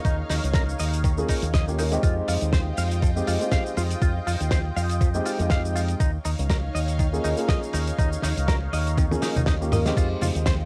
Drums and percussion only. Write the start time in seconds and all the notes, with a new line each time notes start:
0.05 kick, closed hi-hat, shaker
0.30 snare, open hi-hat, shaker
0.44 closed hi-hat, shaker
0.54 kick, snare, closed hi-hat, shaker
0.69 shaker
0.79 open hi-hat, shaker
0.93 closed hi-hat, shaker
1.04 kick, closed hi-hat, shaker
1.18 shaker
1.28 kick, open hi-hat, shaker
1.42 closed hi-hat, shaker
1.54 kick, snare, closed hi-hat, shaker
1.68 shaker
1.79 open hi-hat, shaker
1.92 closed hi-hat, shaker
2.03 kick, closed hi-hat, shaker
2.28 open hi-hat, shaker
2.41 closed hi-hat, shaker
2.53 kick, snare, closed hi-hat, shaker
2.77 open hi-hat, shaker
2.91 closed hi-hat, shaker
3.02 kick, closed hi-hat, shaker
3.17 shaker
3.27 open hi-hat, shaker
3.41 closed hi-hat, shaker
3.52 kick, snare, closed hi-hat, shaker
3.66 shaker
3.77 open hi-hat, shaker
3.91 closed hi-hat, shaker
4.02 kick, closed hi-hat, shaker
4.27 open hi-hat, shaker
4.40 closed hi-hat, shaker
4.51 kick, snare, closed hi-hat, shaker
4.76 open hi-hat, shaker
4.89 closed hi-hat, shaker
5.01 kick, closed hi-hat, shaker
5.14 shaker
5.26 open hi-hat, shaker
5.39 closed hi-hat, shaker
5.50 kick, snare, closed hi-hat, shaker
5.65 shaker
5.76 open hi-hat, shaker
5.88 closed hi-hat, shaker
6.00 kick, closed hi-hat, shaker
6.25 open hi-hat, shaker
6.39 closed hi-hat, shaker
6.50 kick, snare, closed hi-hat, shaker
6.75 open hi-hat, shaker
6.88 closed hi-hat, shaker
6.99 kick, closed hi-hat, shaker
7.14 shaker
7.24 open hi-hat, shaker
7.37 closed hi-hat, shaker
7.49 kick, snare, closed hi-hat, shaker
7.63 shaker
7.73 open hi-hat, shaker
7.87 closed hi-hat, shaker
7.99 kick, closed hi-hat, shaker
8.13 shaker
8.22 snare, open hi-hat, shaker
8.37 closed hi-hat, shaker
8.48 kick, snare, closed hi-hat, shaker
8.73 open hi-hat, shaker
8.87 closed hi-hat, shaker
8.98 kick, closed hi-hat, high tom, shaker
9.12 high tom, shaker
9.22 snare, open hi-hat, shaker
9.37 closed hi-hat, mid tom, shaker
9.46 kick, snare, closed hi-hat
9.48 snare, shaker
9.62 shaker
9.72 mid tom, open hi-hat, shaker
9.86 snare, closed hi-hat, shaker
9.96 kick, closed hi-hat, crash, maracas, shaker
10.21 open hi-hat, low conga, shaker, maracas
10.35 closed hi-hat, shaker
10.46 kick, snare, closed hi-hat, shaker, maracas
10.60 maracas